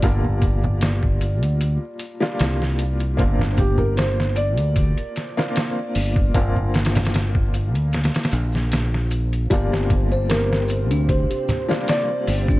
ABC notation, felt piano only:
X:1
M:4/4
L:1/16
Q:"Swing 16ths" 1/4=76
K:Gm
V:1 name="Felt piano"
d8- d2 z6 | z2 G B c2 d8- d2- | d12 z4 | z4 B4 c4 d4 |]